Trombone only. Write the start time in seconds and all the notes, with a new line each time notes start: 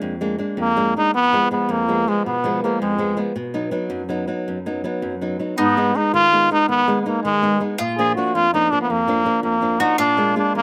0.60 A#3
0.97 D#4
1.15 B3
1.52 B3
1.71 A#3
2.09 G#3
2.26 B3
2.63 A#3
2.81 G#3
5.58 B3
5.96 D#4
6.14 F4
6.52 D#4
6.69 B3
7.02 B3
7.07 A#3
7.23 G#3
7.97 G#4
8.16 F#4
8.34 F4
8.54 D#4
8.71 D4
8.81 B3
8.91 A#3
9.43 A#3
9.80 D#4
9.99 D4
10.38 D4
10.56 A#3